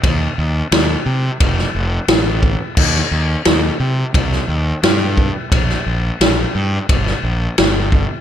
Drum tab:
CC |----------------|x---------------|----------------|
RD |b---b---b---b---|----b---b---b---|b---b---b---b---|
SD |----o----o--o---|-o--o----o--o---|-o--o----o--o---|
BD |o-------o-----o-|o-------o-----o-|o-------o-----o-|